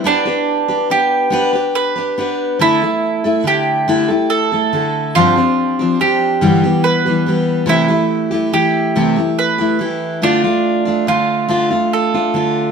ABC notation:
X:1
M:6/8
L:1/16
Q:3/8=47
K:Gmix
V:1 name="Mandolin"
D4 G4 B4 | E4 G4 A4 | F4 G4 B4 | E4 G4 B4 |
D4 F4 A4 |]
V:2 name="Steel-string acoustic guitar"
[B,DGB] [DGB]2 [DGB] [B,DGB]2 [B,DGB] [DGB]2 [DGB] [B,DGB]2 | [D,A,EA] [A,EA]2 [A,EA] [D,A,EA]2 [D,A,EA] [A,EA]2 [A,EA] [D,A,EA]2 | [G,,D,F,CDG] [F,CDG]2 [F,CDG] [F,CDG]2 [G,,D,E,G,B,G] [E,G,B,G]2 [E,G,B,G] [E,G,B,G]2 | [C,E,A,EG] [A,EG]2 [A,EG] [E,A,EG]2 [C,E,A,EG] [A,EG]2 [A,EG] [E,A,EG]2 |
[D,A,DF] [A,DF]2 [A,DF] [D,A,DF]2 [D,A,DF] [A,DF]2 [A,DF] [D,A,DF]2 |]